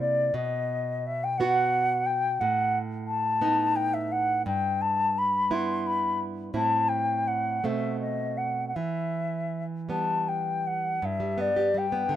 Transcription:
0.00 0.31 C3 soft
0.00 0.31 A#3 soft
0.00 0.32 E4 soft
0.00 0.36 D5 medium
0.34 2.38 B2 medium
0.34 1.08 D#5 medium
1.07 1.25 E5 medium
1.24 1.39 G5 medium
1.38 2.38 B3 soft
1.38 2.39 F#4 medium
1.38 2.08 F#5 medium
2.06 2.42 G5 medium
2.40 4.44 A2 medium
2.40 2.78 F#5 medium
3.07 3.78 A5 medium
3.41 4.43 B3 soft
3.41 4.44 D#4 medium
3.76 3.95 G5 medium
3.94 4.13 E5 medium
4.12 4.46 F#5 medium
4.46 6.49 G2 medium
4.46 4.83 G5 medium
4.82 5.20 A5 medium
5.18 5.54 B5 medium
5.51 6.50 B3 soft
5.51 6.50 E4 medium
5.51 5.88 C6 medium
5.87 6.21 B5 medium
6.54 7.60 A2 medium
6.54 7.59 C4 soft
6.54 7.59 E4 soft
6.54 6.90 A5 medium
6.89 7.29 G5 medium
7.28 7.67 F#5 medium
7.64 8.73 B2 medium
7.64 8.72 A3 soft
7.64 8.72 C4 soft
7.64 8.01 E5 medium
8.01 8.39 D#5 medium
8.38 8.68 F#5 medium
8.68 8.77 F#5 soft
8.76 10.99 E3 soft
8.76 9.64 E5 medium
9.89 10.99 G3 soft
9.89 10.99 B3 soft
9.89 10.30 A5 medium
10.28 10.68 G5 medium
10.67 11.07 F#5 medium
11.02 12.16 G2 medium
11.02 11.42 E5 medium
11.20 11.49 G3 soft
11.38 11.67 B3 soft
11.38 11.80 D5 medium
11.56 11.85 G4 soft
11.74 12.03 G3 soft
11.74 12.16 G5 medium
11.92 12.16 B3 soft
12.09 12.16 D3 soft

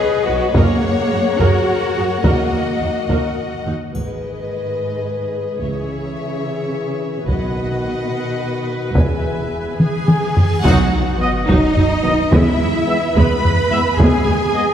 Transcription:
0.00 0.26 G#4 medium
0.00 0.52 B4 medium
0.00 0.51 C#5 medium
0.00 0.54 D#5 medium
0.25 0.35 B1 soft
0.25 0.34 D#4 soft
0.25 0.54 F#4 medium
0.25 0.34 B4 medium
0.52 0.62 F#2 medium
0.52 1.37 A#3 medium
0.52 2.06 G#4 medium
0.52 0.81 G#4 medium
0.52 0.81 A#4 medium
0.52 2.06 C#5 medium
0.52 1.39 C#5 medium
0.52 2.22 C#5 medium
0.52 3.71 F#5 medium
0.52 taiko medium
0.82 0.91 F#2 soft
0.82 0.90 G#4 soft
1.09 1.20 F#2 soft
1.09 1.17 F#4 soft
1.09 1.17 G#4 soft
1.38 1.48 F#2 medium
1.38 2.24 F#4 medium
1.38 1.65 G#4 medium
1.38 1.65 A#4 medium
1.38 2.24 A#4 medium
1.38 taiko medium
1.96 2.04 F#2 soft
1.96 2.04 F#4 soft
1.96 2.04 G#4 soft
2.23 2.32 D#2 soft
2.23 3.08 A#3 medium
2.23 3.49 F#4 medium
2.23 2.50 F#4 medium
2.23 3.66 F#4 soft
2.23 2.50 A#4 medium
2.23 3.63 D#5 soft
2.23 3.72 D#5 medium
2.23 taiko medium
2.51 2.61 D#2 soft
2.51 2.59 F#4 soft
2.81 2.90 D#2 soft
2.81 2.89 D#4 soft
2.81 2.89 F#4 soft
3.09 3.17 D#2 soft
3.09 3.36 F#4 soft
3.09 3.36 A#4 soft
3.09 taiko medium
3.66 3.74 D#2 soft
3.66 3.74 D#4 soft
3.66 3.74 F#4 soft
3.93 4.47 G#1 soft
3.93 5.58 G#2 soft
3.93 5.57 D#3 soft
3.93 7.24 G#4 soft
3.93 5.57 B4 soft
3.93 5.58 B4 soft
3.93 5.57 D#5 soft
3.93 taiko soft
3.93 triangle soft
5.61 6.13 C#2 soft
5.61 7.28 C#3 soft
5.61 7.24 E3 soft
5.61 7.24 G#4 soft
5.61 7.23 C#5 soft
5.61 7.24 E5 soft
7.25 7.79 B1 soft
7.25 8.91 B2 medium
7.25 8.94 D#3 soft
7.25 8.90 F#4 soft
7.25 10.40 B4 medium
7.25 8.91 D#5 medium
7.25 8.92 F#5 soft
7.25 taiko medium
8.94 9.47 E1 soft
8.94 9.78 E2 soft
8.94 10.33 E3 soft
8.94 10.33 G#4 soft
8.94 9.76 E5 soft
8.94 9.76 G#5 soft
8.94 taiko medium
8.94 cymbal swell soft
9.79 10.60 G#4 medium
9.79 10.61 G#5 medium
9.79 taiko mid medium
10.08 taiko mid medium
10.37 taiko low medium
10.63 10.91 B1 medium
10.63 10.90 F#3 medium
10.63 10.90 D#4 medium
10.63 11.44 F#4 medium
10.63 11.44 F#5 medium
10.63 taiko medium
10.63 sub drop medium
10.92 11.00 B1 medium
10.92 11.00 F#3 soft
10.92 11.00 D#4 soft
11.18 11.29 F#3 medium
11.18 11.29 B3 medium
11.18 11.30 D#5 medium
11.47 11.57 B1 medium
11.47 11.74 F#3 medium
11.47 11.73 D#4 medium
11.47 12.32 D#4 medium
11.47 12.30 D#5 medium
11.47 12.32 D#5 medium
11.47 taiko medium
11.76 11.85 B1 soft
11.76 11.84 F#3 medium
11.76 11.84 D#4 medium
11.76 taiko low medium
12.03 12.12 B1 medium
12.03 12.12 D#3 medium
12.03 12.13 F#3 medium
12.03 12.13 B3 medium
12.03 12.12 B3 medium
12.03 12.14 D#5 medium
12.31 12.40 E2 medium
12.31 12.57 G#3 medium
12.31 12.57 B3 medium
12.31 13.15 E4 medium
12.31 13.14 E5 medium
12.31 13.16 E5 medium
12.31 taiko loud
12.59 12.68 E2 soft
12.59 12.67 G#3 soft
12.59 12.67 B3 soft
12.87 12.97 G#3 medium
12.87 12.97 B3 medium
12.87 12.98 E5 medium
13.15 13.23 E2 medium
13.15 13.41 G#3 medium
13.15 13.42 B3 medium
13.15 13.97 B4 medium
13.15 13.98 B5 medium
13.15 13.99 B5 medium
13.15 taiko medium
13.43 13.51 E2 soft
13.43 13.52 G#3 medium
13.43 13.52 B3 medium
13.43 taiko low medium
13.70 13.79 E2 soft
13.70 13.79 E3 medium
13.70 13.81 G#3 medium
13.70 13.79 G#3 medium
13.70 13.81 B3 medium
13.70 13.80 E5 medium
13.98 14.06 D#2 medium
13.98 14.25 G#3 medium
13.98 14.25 B3 medium
13.98 14.74 G#4 medium
13.98 14.74 G#5 medium
13.98 taiko medium
14.26 14.34 D#2 medium
14.26 14.34 G#3 medium
14.26 14.34 B3 medium
14.54 14.64 G#3 medium
14.54 14.64 B3 medium
14.54 14.64 D#5 medium

